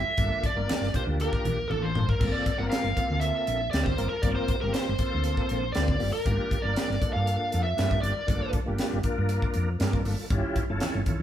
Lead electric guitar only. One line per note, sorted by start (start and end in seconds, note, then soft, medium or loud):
0.00 0.46 E5 medium
0.46 0.92 D5 medium
0.96 1.02 C5 medium
1.22 1.67 A#4 medium
1.68 1.84 A4 medium
1.68 1.71 A#4 medium
1.82 2.09 C5 medium
2.09 2.33 A#4 medium
2.32 2.59 D5 medium
2.58 2.63 F#5 medium
2.70 3.23 F5 medium
3.20 3.70 E5 medium
3.71 3.85 D5 medium
3.84 4.09 C5 medium
4.09 4.23 A#4 medium
4.22 4.27 D5 medium
4.36 4.61 C5 medium
4.61 4.73 A#4 medium
4.73 5.78 C5 medium
5.72 6.10 D5 medium
6.13 6.65 A#4 medium
6.62 7.13 D5 medium
7.13 7.63 F5 medium
7.63 8.01 E5 medium
8.02 8.50 D5 medium